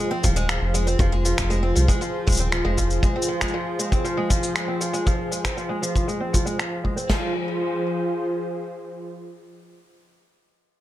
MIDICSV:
0, 0, Header, 1, 5, 480
1, 0, Start_track
1, 0, Key_signature, -4, "minor"
1, 0, Tempo, 508475
1, 938, Time_signature, 4, 2, 24, 8
1, 10200, End_track
2, 0, Start_track
2, 0, Title_t, "Analog synth pad"
2, 0, Program_c, 0, 89
2, 0, Note_on_c, 0, 53, 84
2, 0, Note_on_c, 0, 65, 74
2, 0, Note_on_c, 0, 68, 79
2, 0, Note_on_c, 0, 72, 87
2, 6665, Note_off_c, 0, 53, 0
2, 6665, Note_off_c, 0, 65, 0
2, 6665, Note_off_c, 0, 68, 0
2, 6665, Note_off_c, 0, 72, 0
2, 6697, Note_on_c, 0, 65, 73
2, 6698, Note_on_c, 0, 53, 74
2, 6698, Note_on_c, 0, 72, 83
2, 6699, Note_on_c, 0, 68, 70
2, 9511, Note_off_c, 0, 65, 0
2, 9511, Note_off_c, 0, 72, 0
2, 9512, Note_off_c, 0, 53, 0
2, 9513, Note_off_c, 0, 68, 0
2, 10200, End_track
3, 0, Start_track
3, 0, Title_t, "Twelve-string acoustic guitar"
3, 0, Program_c, 1, 25
3, 102, Note_on_c, 1, 60, 74
3, 208, Note_off_c, 1, 60, 0
3, 220, Note_on_c, 1, 53, 69
3, 327, Note_off_c, 1, 53, 0
3, 341, Note_on_c, 1, 56, 99
3, 454, Note_off_c, 1, 56, 0
3, 461, Note_on_c, 1, 53, 73
3, 688, Note_off_c, 1, 53, 0
3, 699, Note_on_c, 1, 56, 74
3, 807, Note_off_c, 1, 56, 0
3, 820, Note_on_c, 1, 60, 77
3, 927, Note_off_c, 1, 60, 0
3, 941, Note_on_c, 1, 53, 74
3, 1047, Note_off_c, 1, 53, 0
3, 1060, Note_on_c, 1, 56, 87
3, 1173, Note_off_c, 1, 56, 0
3, 1179, Note_on_c, 1, 53, 71
3, 1407, Note_off_c, 1, 53, 0
3, 1416, Note_on_c, 1, 56, 83
3, 1525, Note_off_c, 1, 56, 0
3, 1536, Note_on_c, 1, 60, 70
3, 1645, Note_off_c, 1, 60, 0
3, 1656, Note_on_c, 1, 53, 74
3, 1765, Note_off_c, 1, 53, 0
3, 1778, Note_on_c, 1, 56, 90
3, 1892, Note_off_c, 1, 56, 0
3, 1898, Note_on_c, 1, 53, 73
3, 2126, Note_off_c, 1, 53, 0
3, 2139, Note_on_c, 1, 56, 68
3, 2247, Note_off_c, 1, 56, 0
3, 2259, Note_on_c, 1, 60, 70
3, 2367, Note_off_c, 1, 60, 0
3, 2378, Note_on_c, 1, 53, 69
3, 2486, Note_off_c, 1, 53, 0
3, 2498, Note_on_c, 1, 56, 87
3, 2612, Note_off_c, 1, 56, 0
3, 2617, Note_on_c, 1, 53, 69
3, 2846, Note_off_c, 1, 53, 0
3, 2858, Note_on_c, 1, 56, 80
3, 2966, Note_off_c, 1, 56, 0
3, 2980, Note_on_c, 1, 60, 65
3, 3087, Note_off_c, 1, 60, 0
3, 3098, Note_on_c, 1, 53, 69
3, 3206, Note_off_c, 1, 53, 0
3, 3220, Note_on_c, 1, 56, 95
3, 3333, Note_off_c, 1, 56, 0
3, 3339, Note_on_c, 1, 53, 79
3, 3567, Note_off_c, 1, 53, 0
3, 3578, Note_on_c, 1, 56, 72
3, 3686, Note_off_c, 1, 56, 0
3, 3697, Note_on_c, 1, 60, 66
3, 3806, Note_off_c, 1, 60, 0
3, 3818, Note_on_c, 1, 53, 75
3, 3926, Note_off_c, 1, 53, 0
3, 3939, Note_on_c, 1, 56, 91
3, 4053, Note_off_c, 1, 56, 0
3, 4058, Note_on_c, 1, 53, 70
3, 4286, Note_off_c, 1, 53, 0
3, 4297, Note_on_c, 1, 56, 65
3, 4406, Note_off_c, 1, 56, 0
3, 4418, Note_on_c, 1, 60, 62
3, 4526, Note_off_c, 1, 60, 0
3, 4538, Note_on_c, 1, 53, 68
3, 4646, Note_off_c, 1, 53, 0
3, 4657, Note_on_c, 1, 56, 90
3, 4772, Note_off_c, 1, 56, 0
3, 4777, Note_on_c, 1, 53, 70
3, 5006, Note_off_c, 1, 53, 0
3, 5015, Note_on_c, 1, 56, 65
3, 5125, Note_off_c, 1, 56, 0
3, 5136, Note_on_c, 1, 60, 69
3, 5246, Note_off_c, 1, 60, 0
3, 5256, Note_on_c, 1, 53, 73
3, 5365, Note_off_c, 1, 53, 0
3, 5372, Note_on_c, 1, 56, 88
3, 5490, Note_off_c, 1, 56, 0
3, 5494, Note_on_c, 1, 53, 70
3, 5724, Note_off_c, 1, 53, 0
3, 5736, Note_on_c, 1, 56, 69
3, 5845, Note_off_c, 1, 56, 0
3, 5856, Note_on_c, 1, 60, 67
3, 5965, Note_off_c, 1, 60, 0
3, 5974, Note_on_c, 1, 53, 63
3, 6084, Note_off_c, 1, 53, 0
3, 6094, Note_on_c, 1, 56, 87
3, 6210, Note_off_c, 1, 56, 0
3, 6216, Note_on_c, 1, 53, 61
3, 6445, Note_off_c, 1, 53, 0
3, 6453, Note_on_c, 1, 56, 60
3, 6564, Note_off_c, 1, 56, 0
3, 6575, Note_on_c, 1, 60, 67
3, 6685, Note_off_c, 1, 60, 0
3, 6696, Note_on_c, 1, 53, 79
3, 6920, Note_off_c, 1, 53, 0
3, 10200, End_track
4, 0, Start_track
4, 0, Title_t, "Analog synth bass"
4, 0, Program_c, 2, 38
4, 229, Note_on_c, 2, 27, 79
4, 550, Note_off_c, 2, 27, 0
4, 579, Note_on_c, 2, 29, 86
4, 905, Note_off_c, 2, 29, 0
4, 936, Note_on_c, 2, 29, 91
4, 1264, Note_off_c, 2, 29, 0
4, 1312, Note_on_c, 2, 29, 107
4, 1632, Note_off_c, 2, 29, 0
4, 1663, Note_on_c, 2, 36, 104
4, 1760, Note_off_c, 2, 36, 0
4, 2148, Note_on_c, 2, 27, 77
4, 2470, Note_off_c, 2, 27, 0
4, 2499, Note_on_c, 2, 29, 83
4, 2825, Note_off_c, 2, 29, 0
4, 10200, End_track
5, 0, Start_track
5, 0, Title_t, "Drums"
5, 223, Note_on_c, 9, 82, 74
5, 228, Note_on_c, 9, 36, 93
5, 317, Note_off_c, 9, 82, 0
5, 322, Note_off_c, 9, 36, 0
5, 344, Note_on_c, 9, 82, 43
5, 439, Note_off_c, 9, 82, 0
5, 464, Note_on_c, 9, 26, 74
5, 465, Note_on_c, 9, 82, 30
5, 558, Note_off_c, 9, 26, 0
5, 560, Note_off_c, 9, 82, 0
5, 704, Note_on_c, 9, 82, 71
5, 799, Note_off_c, 9, 82, 0
5, 825, Note_on_c, 9, 82, 38
5, 919, Note_off_c, 9, 82, 0
5, 936, Note_on_c, 9, 36, 118
5, 943, Note_on_c, 9, 82, 31
5, 1031, Note_off_c, 9, 36, 0
5, 1038, Note_off_c, 9, 82, 0
5, 1184, Note_on_c, 9, 82, 72
5, 1278, Note_off_c, 9, 82, 0
5, 1303, Note_on_c, 9, 26, 85
5, 1304, Note_on_c, 9, 82, 49
5, 1311, Note_on_c, 9, 36, 59
5, 1397, Note_off_c, 9, 26, 0
5, 1399, Note_off_c, 9, 82, 0
5, 1406, Note_off_c, 9, 36, 0
5, 1424, Note_on_c, 9, 82, 30
5, 1518, Note_off_c, 9, 82, 0
5, 1664, Note_on_c, 9, 82, 70
5, 1758, Note_off_c, 9, 82, 0
5, 1778, Note_on_c, 9, 36, 93
5, 1785, Note_on_c, 9, 82, 42
5, 1873, Note_off_c, 9, 36, 0
5, 1880, Note_off_c, 9, 82, 0
5, 1906, Note_on_c, 9, 82, 31
5, 2000, Note_off_c, 9, 82, 0
5, 2145, Note_on_c, 9, 82, 34
5, 2148, Note_on_c, 9, 36, 96
5, 2167, Note_off_c, 9, 82, 0
5, 2167, Note_on_c, 9, 82, 39
5, 2192, Note_off_c, 9, 82, 0
5, 2192, Note_on_c, 9, 82, 48
5, 2215, Note_off_c, 9, 82, 0
5, 2215, Note_on_c, 9, 82, 58
5, 2237, Note_off_c, 9, 82, 0
5, 2237, Note_on_c, 9, 82, 67
5, 2243, Note_off_c, 9, 36, 0
5, 2264, Note_off_c, 9, 82, 0
5, 2264, Note_on_c, 9, 82, 41
5, 2358, Note_off_c, 9, 82, 0
5, 2382, Note_on_c, 9, 26, 73
5, 2384, Note_on_c, 9, 82, 31
5, 2477, Note_off_c, 9, 26, 0
5, 2478, Note_off_c, 9, 82, 0
5, 2622, Note_on_c, 9, 82, 66
5, 2625, Note_on_c, 9, 36, 49
5, 2717, Note_off_c, 9, 82, 0
5, 2719, Note_off_c, 9, 36, 0
5, 2742, Note_on_c, 9, 82, 41
5, 2836, Note_off_c, 9, 82, 0
5, 2859, Note_on_c, 9, 36, 112
5, 2862, Note_on_c, 9, 82, 34
5, 2954, Note_off_c, 9, 36, 0
5, 2956, Note_off_c, 9, 82, 0
5, 3041, Note_on_c, 9, 82, 71
5, 3135, Note_off_c, 9, 82, 0
5, 3221, Note_on_c, 9, 26, 79
5, 3223, Note_on_c, 9, 82, 48
5, 3227, Note_on_c, 9, 36, 55
5, 3285, Note_off_c, 9, 82, 0
5, 3285, Note_on_c, 9, 82, 35
5, 3316, Note_off_c, 9, 26, 0
5, 3322, Note_off_c, 9, 36, 0
5, 3379, Note_off_c, 9, 82, 0
5, 3584, Note_on_c, 9, 82, 70
5, 3678, Note_off_c, 9, 82, 0
5, 3702, Note_on_c, 9, 36, 94
5, 3704, Note_on_c, 9, 82, 39
5, 3796, Note_off_c, 9, 36, 0
5, 3798, Note_off_c, 9, 82, 0
5, 3825, Note_on_c, 9, 82, 30
5, 3919, Note_off_c, 9, 82, 0
5, 4063, Note_on_c, 9, 36, 91
5, 4063, Note_on_c, 9, 82, 71
5, 4157, Note_off_c, 9, 82, 0
5, 4158, Note_off_c, 9, 36, 0
5, 4184, Note_on_c, 9, 82, 46
5, 4278, Note_off_c, 9, 82, 0
5, 4302, Note_on_c, 9, 26, 67
5, 4303, Note_on_c, 9, 82, 31
5, 4396, Note_off_c, 9, 26, 0
5, 4397, Note_off_c, 9, 82, 0
5, 4543, Note_on_c, 9, 82, 72
5, 4637, Note_off_c, 9, 82, 0
5, 4662, Note_on_c, 9, 82, 41
5, 4756, Note_off_c, 9, 82, 0
5, 4784, Note_on_c, 9, 36, 102
5, 4784, Note_on_c, 9, 82, 29
5, 4878, Note_off_c, 9, 36, 0
5, 4878, Note_off_c, 9, 82, 0
5, 5024, Note_on_c, 9, 82, 64
5, 5119, Note_off_c, 9, 82, 0
5, 5143, Note_on_c, 9, 26, 77
5, 5144, Note_on_c, 9, 36, 57
5, 5144, Note_on_c, 9, 82, 46
5, 5237, Note_off_c, 9, 26, 0
5, 5238, Note_off_c, 9, 82, 0
5, 5239, Note_off_c, 9, 36, 0
5, 5264, Note_on_c, 9, 82, 28
5, 5359, Note_off_c, 9, 82, 0
5, 5506, Note_on_c, 9, 82, 68
5, 5600, Note_off_c, 9, 82, 0
5, 5622, Note_on_c, 9, 36, 82
5, 5626, Note_on_c, 9, 82, 38
5, 5716, Note_off_c, 9, 36, 0
5, 5720, Note_off_c, 9, 82, 0
5, 5746, Note_on_c, 9, 82, 29
5, 5840, Note_off_c, 9, 82, 0
5, 5986, Note_on_c, 9, 82, 68
5, 5987, Note_on_c, 9, 36, 84
5, 6080, Note_off_c, 9, 82, 0
5, 6081, Note_off_c, 9, 36, 0
5, 6106, Note_on_c, 9, 82, 43
5, 6201, Note_off_c, 9, 82, 0
5, 6226, Note_on_c, 9, 26, 64
5, 6227, Note_on_c, 9, 82, 28
5, 6320, Note_off_c, 9, 26, 0
5, 6321, Note_off_c, 9, 82, 0
5, 6464, Note_on_c, 9, 36, 49
5, 6558, Note_off_c, 9, 36, 0
5, 6584, Note_on_c, 9, 82, 39
5, 6679, Note_off_c, 9, 82, 0
5, 6699, Note_on_c, 9, 36, 84
5, 6699, Note_on_c, 9, 38, 91
5, 6699, Note_on_c, 9, 49, 69
5, 6793, Note_off_c, 9, 36, 0
5, 6793, Note_off_c, 9, 38, 0
5, 6793, Note_off_c, 9, 49, 0
5, 10200, End_track
0, 0, End_of_file